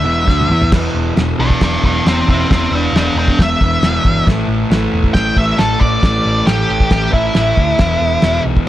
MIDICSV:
0, 0, Header, 1, 5, 480
1, 0, Start_track
1, 0, Key_signature, 1, "minor"
1, 0, Tempo, 442478
1, 786, Time_signature, 4, 2, 24, 8
1, 9420, End_track
2, 0, Start_track
2, 0, Title_t, "Lead electric guitar"
2, 0, Program_c, 0, 29
2, 0, Note_on_c, 0, 76, 122
2, 752, Note_off_c, 0, 76, 0
2, 1518, Note_on_c, 0, 71, 72
2, 1526, Note_on_c, 0, 74, 85
2, 1752, Note_off_c, 0, 74, 0
2, 1756, Note_off_c, 0, 71, 0
2, 1775, Note_on_c, 0, 71, 79
2, 1783, Note_on_c, 0, 74, 89
2, 1988, Note_off_c, 0, 71, 0
2, 2002, Note_off_c, 0, 74, 0
2, 2010, Note_on_c, 0, 71, 85
2, 2017, Note_on_c, 0, 74, 82
2, 2227, Note_off_c, 0, 71, 0
2, 2237, Note_off_c, 0, 74, 0
2, 2255, Note_on_c, 0, 67, 78
2, 2263, Note_on_c, 0, 76, 68
2, 2470, Note_off_c, 0, 67, 0
2, 2478, Note_off_c, 0, 76, 0
2, 2491, Note_on_c, 0, 67, 68
2, 2495, Note_on_c, 0, 76, 79
2, 2708, Note_off_c, 0, 67, 0
2, 2717, Note_off_c, 0, 76, 0
2, 2736, Note_on_c, 0, 67, 71
2, 2741, Note_on_c, 0, 76, 87
2, 2950, Note_off_c, 0, 67, 0
2, 2962, Note_off_c, 0, 76, 0
2, 2984, Note_on_c, 0, 71, 74
2, 2987, Note_on_c, 0, 79, 64
2, 3196, Note_off_c, 0, 71, 0
2, 3203, Note_off_c, 0, 79, 0
2, 3224, Note_on_c, 0, 71, 82
2, 3228, Note_on_c, 0, 79, 80
2, 3435, Note_off_c, 0, 71, 0
2, 3444, Note_off_c, 0, 79, 0
2, 3453, Note_on_c, 0, 71, 65
2, 3460, Note_on_c, 0, 79, 80
2, 3669, Note_off_c, 0, 71, 0
2, 3681, Note_off_c, 0, 79, 0
2, 3712, Note_on_c, 0, 76, 105
2, 4626, Note_off_c, 0, 76, 0
2, 5573, Note_on_c, 0, 79, 106
2, 5816, Note_off_c, 0, 79, 0
2, 5835, Note_on_c, 0, 76, 93
2, 6057, Note_on_c, 0, 69, 91
2, 6066, Note_off_c, 0, 76, 0
2, 6288, Note_on_c, 0, 74, 84
2, 6297, Note_off_c, 0, 69, 0
2, 6996, Note_off_c, 0, 74, 0
2, 7016, Note_on_c, 0, 67, 90
2, 7487, Note_off_c, 0, 67, 0
2, 7510, Note_on_c, 0, 67, 90
2, 7735, Note_off_c, 0, 67, 0
2, 7740, Note_on_c, 0, 64, 102
2, 9134, Note_off_c, 0, 64, 0
2, 9420, End_track
3, 0, Start_track
3, 0, Title_t, "Distorted electric guitar"
3, 0, Program_c, 1, 30
3, 51, Note_on_c, 1, 40, 98
3, 59, Note_on_c, 1, 47, 87
3, 59, Note_on_c, 1, 52, 95
3, 272, Note_off_c, 1, 47, 0
3, 277, Note_off_c, 1, 52, 0
3, 277, Note_on_c, 1, 50, 90
3, 281, Note_on_c, 1, 57, 103
3, 291, Note_off_c, 1, 40, 0
3, 292, Note_on_c, 1, 62, 106
3, 524, Note_off_c, 1, 50, 0
3, 526, Note_off_c, 1, 57, 0
3, 532, Note_off_c, 1, 62, 0
3, 544, Note_on_c, 1, 52, 88
3, 557, Note_on_c, 1, 59, 94
3, 564, Note_on_c, 1, 64, 97
3, 779, Note_off_c, 1, 52, 0
3, 785, Note_off_c, 1, 59, 0
3, 789, Note_off_c, 1, 64, 0
3, 795, Note_on_c, 1, 40, 90
3, 810, Note_on_c, 1, 47, 91
3, 823, Note_on_c, 1, 52, 98
3, 1253, Note_off_c, 1, 47, 0
3, 1254, Note_off_c, 1, 40, 0
3, 1258, Note_on_c, 1, 40, 70
3, 1267, Note_on_c, 1, 47, 81
3, 1279, Note_off_c, 1, 52, 0
3, 1283, Note_on_c, 1, 52, 75
3, 1997, Note_off_c, 1, 52, 0
3, 2001, Note_on_c, 1, 52, 66
3, 2018, Note_off_c, 1, 47, 0
3, 2031, Note_on_c, 1, 47, 52
3, 2225, Note_off_c, 1, 40, 0
3, 2238, Note_on_c, 1, 40, 98
3, 2246, Note_off_c, 1, 47, 0
3, 2259, Note_on_c, 1, 47, 102
3, 2274, Note_off_c, 1, 52, 0
3, 2278, Note_on_c, 1, 52, 98
3, 2500, Note_off_c, 1, 52, 0
3, 2505, Note_on_c, 1, 52, 72
3, 2522, Note_off_c, 1, 47, 0
3, 2535, Note_on_c, 1, 47, 61
3, 2717, Note_off_c, 1, 40, 0
3, 2732, Note_off_c, 1, 47, 0
3, 2732, Note_on_c, 1, 40, 82
3, 2745, Note_on_c, 1, 47, 92
3, 2761, Note_off_c, 1, 52, 0
3, 2765, Note_on_c, 1, 52, 99
3, 3182, Note_off_c, 1, 40, 0
3, 3195, Note_on_c, 1, 40, 79
3, 3197, Note_off_c, 1, 47, 0
3, 3210, Note_on_c, 1, 47, 74
3, 3231, Note_off_c, 1, 52, 0
3, 3235, Note_on_c, 1, 52, 68
3, 3909, Note_off_c, 1, 52, 0
3, 3913, Note_on_c, 1, 52, 68
3, 3938, Note_off_c, 1, 47, 0
3, 3951, Note_on_c, 1, 47, 61
3, 4152, Note_off_c, 1, 40, 0
3, 4165, Note_off_c, 1, 47, 0
3, 4165, Note_on_c, 1, 40, 91
3, 4178, Note_on_c, 1, 47, 102
3, 4187, Note_off_c, 1, 52, 0
3, 4192, Note_on_c, 1, 52, 97
3, 4377, Note_off_c, 1, 52, 0
3, 4382, Note_on_c, 1, 52, 65
3, 4406, Note_off_c, 1, 47, 0
3, 4419, Note_on_c, 1, 47, 64
3, 4617, Note_off_c, 1, 47, 0
3, 4622, Note_on_c, 1, 45, 100
3, 4626, Note_off_c, 1, 40, 0
3, 4632, Note_off_c, 1, 52, 0
3, 4636, Note_on_c, 1, 52, 95
3, 4653, Note_on_c, 1, 57, 114
3, 5102, Note_off_c, 1, 45, 0
3, 5107, Note_on_c, 1, 45, 65
3, 5121, Note_off_c, 1, 52, 0
3, 5126, Note_on_c, 1, 52, 77
3, 5136, Note_off_c, 1, 57, 0
3, 5140, Note_on_c, 1, 57, 89
3, 5814, Note_off_c, 1, 57, 0
3, 5827, Note_on_c, 1, 57, 77
3, 5853, Note_off_c, 1, 52, 0
3, 5857, Note_on_c, 1, 52, 58
3, 6026, Note_off_c, 1, 45, 0
3, 6039, Note_on_c, 1, 45, 105
3, 6047, Note_off_c, 1, 52, 0
3, 6051, Note_on_c, 1, 52, 100
3, 6056, Note_off_c, 1, 57, 0
3, 6069, Note_on_c, 1, 57, 103
3, 6289, Note_off_c, 1, 57, 0
3, 6302, Note_on_c, 1, 57, 70
3, 6328, Note_off_c, 1, 52, 0
3, 6333, Note_on_c, 1, 52, 56
3, 6526, Note_off_c, 1, 45, 0
3, 6539, Note_on_c, 1, 45, 109
3, 6553, Note_off_c, 1, 52, 0
3, 6558, Note_on_c, 1, 52, 102
3, 6566, Note_off_c, 1, 57, 0
3, 6579, Note_on_c, 1, 57, 119
3, 7007, Note_off_c, 1, 45, 0
3, 7020, Note_on_c, 1, 45, 75
3, 7033, Note_off_c, 1, 52, 0
3, 7037, Note_on_c, 1, 52, 71
3, 7040, Note_off_c, 1, 57, 0
3, 7053, Note_on_c, 1, 57, 85
3, 7700, Note_off_c, 1, 57, 0
3, 7713, Note_on_c, 1, 57, 72
3, 7753, Note_off_c, 1, 52, 0
3, 7758, Note_on_c, 1, 52, 60
3, 7936, Note_off_c, 1, 45, 0
3, 7949, Note_on_c, 1, 45, 97
3, 7968, Note_off_c, 1, 57, 0
3, 7969, Note_off_c, 1, 52, 0
3, 7973, Note_on_c, 1, 52, 102
3, 7981, Note_on_c, 1, 57, 107
3, 8186, Note_off_c, 1, 57, 0
3, 8199, Note_on_c, 1, 57, 73
3, 8236, Note_off_c, 1, 52, 0
3, 8241, Note_on_c, 1, 52, 60
3, 8431, Note_off_c, 1, 45, 0
3, 8436, Note_off_c, 1, 57, 0
3, 8450, Note_on_c, 1, 40, 84
3, 8464, Note_on_c, 1, 47, 105
3, 8472, Note_off_c, 1, 52, 0
3, 8476, Note_on_c, 1, 52, 114
3, 8927, Note_off_c, 1, 40, 0
3, 8931, Note_on_c, 1, 40, 68
3, 8943, Note_off_c, 1, 47, 0
3, 8956, Note_on_c, 1, 47, 73
3, 8962, Note_off_c, 1, 52, 0
3, 8966, Note_on_c, 1, 52, 86
3, 9420, Note_off_c, 1, 40, 0
3, 9420, Note_off_c, 1, 47, 0
3, 9420, Note_off_c, 1, 52, 0
3, 9420, End_track
4, 0, Start_track
4, 0, Title_t, "Picked electric bass"
4, 0, Program_c, 2, 34
4, 37, Note_on_c, 2, 28, 87
4, 273, Note_off_c, 2, 28, 0
4, 301, Note_on_c, 2, 38, 92
4, 522, Note_off_c, 2, 38, 0
4, 529, Note_on_c, 2, 40, 100
4, 761, Note_off_c, 2, 40, 0
4, 777, Note_on_c, 2, 28, 88
4, 942, Note_off_c, 2, 28, 0
4, 1026, Note_on_c, 2, 28, 74
4, 1189, Note_off_c, 2, 28, 0
4, 1275, Note_on_c, 2, 28, 85
4, 1435, Note_off_c, 2, 28, 0
4, 1510, Note_on_c, 2, 35, 91
4, 1672, Note_off_c, 2, 35, 0
4, 1745, Note_on_c, 2, 28, 86
4, 1909, Note_off_c, 2, 28, 0
4, 1993, Note_on_c, 2, 28, 77
4, 2154, Note_off_c, 2, 28, 0
4, 2237, Note_on_c, 2, 28, 88
4, 2397, Note_off_c, 2, 28, 0
4, 2472, Note_on_c, 2, 28, 82
4, 2634, Note_off_c, 2, 28, 0
4, 2716, Note_on_c, 2, 28, 89
4, 2877, Note_off_c, 2, 28, 0
4, 2943, Note_on_c, 2, 28, 90
4, 3109, Note_off_c, 2, 28, 0
4, 3173, Note_on_c, 2, 28, 92
4, 3342, Note_off_c, 2, 28, 0
4, 3415, Note_on_c, 2, 28, 92
4, 3584, Note_off_c, 2, 28, 0
4, 3671, Note_on_c, 2, 28, 94
4, 3834, Note_off_c, 2, 28, 0
4, 3913, Note_on_c, 2, 28, 86
4, 4075, Note_off_c, 2, 28, 0
4, 4144, Note_on_c, 2, 28, 97
4, 4309, Note_off_c, 2, 28, 0
4, 4395, Note_on_c, 2, 31, 90
4, 4556, Note_off_c, 2, 31, 0
4, 4631, Note_on_c, 2, 33, 95
4, 4794, Note_off_c, 2, 33, 0
4, 4857, Note_on_c, 2, 33, 89
4, 5024, Note_off_c, 2, 33, 0
4, 5099, Note_on_c, 2, 33, 92
4, 5265, Note_off_c, 2, 33, 0
4, 5350, Note_on_c, 2, 28, 89
4, 5513, Note_off_c, 2, 28, 0
4, 5582, Note_on_c, 2, 33, 93
4, 5747, Note_off_c, 2, 33, 0
4, 5819, Note_on_c, 2, 33, 79
4, 5985, Note_off_c, 2, 33, 0
4, 6069, Note_on_c, 2, 33, 81
4, 6231, Note_off_c, 2, 33, 0
4, 6305, Note_on_c, 2, 33, 89
4, 6468, Note_off_c, 2, 33, 0
4, 6542, Note_on_c, 2, 33, 88
4, 6706, Note_off_c, 2, 33, 0
4, 6785, Note_on_c, 2, 33, 81
4, 6947, Note_off_c, 2, 33, 0
4, 7017, Note_on_c, 2, 33, 104
4, 7181, Note_off_c, 2, 33, 0
4, 7269, Note_on_c, 2, 33, 92
4, 7429, Note_off_c, 2, 33, 0
4, 7498, Note_on_c, 2, 33, 95
4, 7662, Note_off_c, 2, 33, 0
4, 7735, Note_on_c, 2, 33, 77
4, 7899, Note_off_c, 2, 33, 0
4, 7989, Note_on_c, 2, 33, 87
4, 8148, Note_off_c, 2, 33, 0
4, 8218, Note_on_c, 2, 38, 88
4, 8380, Note_off_c, 2, 38, 0
4, 8459, Note_on_c, 2, 28, 97
4, 8620, Note_off_c, 2, 28, 0
4, 8679, Note_on_c, 2, 28, 75
4, 8847, Note_off_c, 2, 28, 0
4, 8926, Note_on_c, 2, 28, 86
4, 9091, Note_off_c, 2, 28, 0
4, 9172, Note_on_c, 2, 35, 91
4, 9335, Note_off_c, 2, 35, 0
4, 9420, End_track
5, 0, Start_track
5, 0, Title_t, "Drums"
5, 300, Note_on_c, 9, 36, 108
5, 309, Note_on_c, 9, 38, 60
5, 409, Note_off_c, 9, 36, 0
5, 417, Note_off_c, 9, 38, 0
5, 436, Note_on_c, 9, 48, 59
5, 544, Note_off_c, 9, 48, 0
5, 559, Note_on_c, 9, 45, 90
5, 667, Note_off_c, 9, 45, 0
5, 667, Note_on_c, 9, 43, 92
5, 776, Note_off_c, 9, 43, 0
5, 781, Note_on_c, 9, 49, 113
5, 781, Note_on_c, 9, 57, 63
5, 782, Note_on_c, 9, 36, 108
5, 786, Note_on_c, 9, 38, 108
5, 889, Note_off_c, 9, 49, 0
5, 889, Note_off_c, 9, 57, 0
5, 891, Note_off_c, 9, 36, 0
5, 895, Note_off_c, 9, 38, 0
5, 1268, Note_on_c, 9, 57, 64
5, 1274, Note_on_c, 9, 38, 106
5, 1377, Note_off_c, 9, 57, 0
5, 1382, Note_off_c, 9, 38, 0
5, 1630, Note_on_c, 9, 36, 78
5, 1738, Note_off_c, 9, 36, 0
5, 1746, Note_on_c, 9, 57, 64
5, 1751, Note_on_c, 9, 36, 97
5, 1752, Note_on_c, 9, 38, 123
5, 1855, Note_off_c, 9, 57, 0
5, 1859, Note_off_c, 9, 36, 0
5, 1860, Note_off_c, 9, 38, 0
5, 1992, Note_on_c, 9, 36, 76
5, 2101, Note_off_c, 9, 36, 0
5, 2238, Note_on_c, 9, 57, 58
5, 2243, Note_on_c, 9, 38, 107
5, 2346, Note_off_c, 9, 57, 0
5, 2352, Note_off_c, 9, 38, 0
5, 2481, Note_on_c, 9, 36, 79
5, 2589, Note_off_c, 9, 36, 0
5, 2722, Note_on_c, 9, 36, 122
5, 2725, Note_on_c, 9, 57, 57
5, 2731, Note_on_c, 9, 38, 107
5, 2830, Note_off_c, 9, 36, 0
5, 2834, Note_off_c, 9, 57, 0
5, 2839, Note_off_c, 9, 38, 0
5, 3207, Note_on_c, 9, 57, 53
5, 3212, Note_on_c, 9, 38, 112
5, 3315, Note_off_c, 9, 57, 0
5, 3321, Note_off_c, 9, 38, 0
5, 3559, Note_on_c, 9, 36, 75
5, 3667, Note_off_c, 9, 36, 0
5, 3679, Note_on_c, 9, 36, 95
5, 3688, Note_on_c, 9, 57, 56
5, 3694, Note_on_c, 9, 38, 114
5, 3787, Note_off_c, 9, 36, 0
5, 3797, Note_off_c, 9, 57, 0
5, 3802, Note_off_c, 9, 38, 0
5, 3916, Note_on_c, 9, 36, 82
5, 4024, Note_off_c, 9, 36, 0
5, 4150, Note_on_c, 9, 57, 57
5, 4155, Note_on_c, 9, 38, 96
5, 4258, Note_off_c, 9, 57, 0
5, 4264, Note_off_c, 9, 38, 0
5, 4393, Note_on_c, 9, 36, 72
5, 4502, Note_off_c, 9, 36, 0
5, 4635, Note_on_c, 9, 36, 115
5, 4643, Note_on_c, 9, 57, 64
5, 4649, Note_on_c, 9, 38, 113
5, 4744, Note_off_c, 9, 36, 0
5, 4752, Note_off_c, 9, 57, 0
5, 4757, Note_off_c, 9, 38, 0
5, 5112, Note_on_c, 9, 57, 63
5, 5117, Note_on_c, 9, 38, 104
5, 5220, Note_off_c, 9, 57, 0
5, 5226, Note_off_c, 9, 38, 0
5, 5467, Note_on_c, 9, 36, 76
5, 5576, Note_off_c, 9, 36, 0
5, 5581, Note_on_c, 9, 57, 68
5, 5583, Note_on_c, 9, 36, 103
5, 5587, Note_on_c, 9, 38, 115
5, 5690, Note_off_c, 9, 57, 0
5, 5691, Note_off_c, 9, 36, 0
5, 5695, Note_off_c, 9, 38, 0
5, 5821, Note_on_c, 9, 36, 83
5, 5930, Note_off_c, 9, 36, 0
5, 6060, Note_on_c, 9, 57, 56
5, 6065, Note_on_c, 9, 38, 100
5, 6168, Note_off_c, 9, 57, 0
5, 6174, Note_off_c, 9, 38, 0
5, 6304, Note_on_c, 9, 36, 80
5, 6412, Note_off_c, 9, 36, 0
5, 6542, Note_on_c, 9, 36, 118
5, 6543, Note_on_c, 9, 57, 59
5, 6548, Note_on_c, 9, 38, 113
5, 6650, Note_off_c, 9, 36, 0
5, 6651, Note_off_c, 9, 57, 0
5, 6657, Note_off_c, 9, 38, 0
5, 7018, Note_on_c, 9, 57, 56
5, 7023, Note_on_c, 9, 38, 122
5, 7126, Note_off_c, 9, 57, 0
5, 7131, Note_off_c, 9, 38, 0
5, 7380, Note_on_c, 9, 36, 86
5, 7489, Note_off_c, 9, 36, 0
5, 7490, Note_on_c, 9, 57, 56
5, 7495, Note_on_c, 9, 38, 108
5, 7497, Note_on_c, 9, 36, 104
5, 7598, Note_off_c, 9, 57, 0
5, 7604, Note_off_c, 9, 38, 0
5, 7606, Note_off_c, 9, 36, 0
5, 7739, Note_on_c, 9, 36, 83
5, 7847, Note_off_c, 9, 36, 0
5, 7968, Note_on_c, 9, 57, 51
5, 7974, Note_on_c, 9, 38, 107
5, 8077, Note_off_c, 9, 57, 0
5, 8082, Note_off_c, 9, 38, 0
5, 8217, Note_on_c, 9, 36, 79
5, 8325, Note_off_c, 9, 36, 0
5, 8446, Note_on_c, 9, 57, 57
5, 8451, Note_on_c, 9, 38, 114
5, 8456, Note_on_c, 9, 36, 107
5, 8554, Note_off_c, 9, 57, 0
5, 8560, Note_off_c, 9, 38, 0
5, 8564, Note_off_c, 9, 36, 0
5, 8916, Note_on_c, 9, 57, 59
5, 8921, Note_on_c, 9, 38, 105
5, 9024, Note_off_c, 9, 57, 0
5, 9030, Note_off_c, 9, 38, 0
5, 9292, Note_on_c, 9, 36, 81
5, 9401, Note_off_c, 9, 36, 0
5, 9420, End_track
0, 0, End_of_file